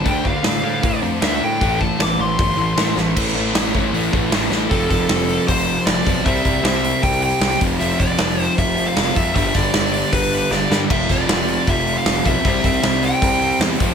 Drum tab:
CC |--------|--------|x-------|--------|
HH |o-o-o-o-|o-o-o-o-|--o-o-o-|oooooooo|
SD |--o---o-|--o---oo|--o---oo|--o---o-|
BD |oo--o---|oo--o---|o--o-o--|oo--o--o|

CC |--------|--------|--------|x-------|
HH |oooooooo|oooooooo|oooooo--|-ooooooo|
SD |--o---o-|--o---o-|-oo---oo|-oo---o-|
BD |oo--o--o|-o--o--o|oo--o---|oo--o--o|

CC |--------|
HH |oooooooo|
SD |-oo---o-|
BD |oo--o--o|